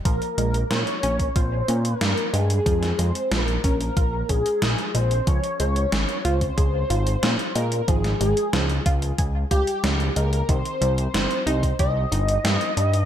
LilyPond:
<<
  \new Staff \with { instrumentName = "Analog synth lead" } { \time 4/4 \key des \lydian \tempo 4 = 92 bes'8 bes'8 des''4 c''8. bes'8. aes'8~ | aes'8 c''8 bes'8 bes'4 aes'4 c''8 | des''8 des''4 c''2 bes'8 | aes'8 aes'4 r4 g'4 bes'8 |
c''4 c''4 ees''2 | }
  \new Staff \with { instrumentName = "Synth arpeggio sound" } { \time 4/4 \key des \lydian f8 aes8 bes8 des'8 f'8 des'8 bes8 aes8 | f8 aes8 f8 des'8 f'8 des'8 bes8 aes8 | f8 aes8 des'8 f'8 aes'8 f'8 des'8 aes8 | f8 aes8 f8 f'8 aes'8 f'8 des'8 aes8 |
ees8 g8 c'8 ees'8 g'8 ees'8 c'8 g8 | }
  \new Staff \with { instrumentName = "Analog synth bass" } { \clef bass \time 4/4 \key des \lydian bes,,8 bes,,8 bes,8 bes,,8 bes,,8 bes,8 g,8 g,8 | f,8 f,8 bes,,8 bes,,8 bes,,8 bes,,8 bes,,8 bes,,8 | des,8 des,8 aes,,8 des,8 des,8 aes,,8 bes,8 bes,8 | aes,,8 aes,,8 des,8 des,8 des,8 des,8 des,8 des,8 |
c,8 c,8 g,,8 c,8 c,8 g,,8 g,8 g,8 | }
  \new DrumStaff \with { instrumentName = "Drums" } \drummode { \time 4/4 <hh bd>16 hh16 hh16 hh16 <hh sn>16 hh16 hh16 <hh bd>16 <hh bd>8 hh16 hh16 <hh sn>16 hh16 hh16 hh16 | <hh bd>16 <hh sn>16 hh16 hh16 <hh sn>16 hh16 <hh bd>16 hh16 <hh bd>8 <hh bd>16 hh16 <hh sn>16 hh16 hh16 hh16 | <hh bd>16 hh16 hh16 hh16 <hh sn>16 hh16 hh16 <hh bd>16 <hh bd>8 hh16 hh16 <hh sn>16 hh16 hh16 hh16 | <hh bd>16 <hh sn>16 hh16 hh16 <hh sn>16 hh16 <hh bd>16 hh16 <hh bd>8 <hh bd>16 hh16 <hh sn>16 hh16 hh16 hh16 |
<hh bd>16 hh16 hh16 hh16 <hh sn>16 hh16 hh16 <hh bd>16 <hh bd>8 hh16 hh16 <hh sn>16 hh16 hh16 hh16 | }
>>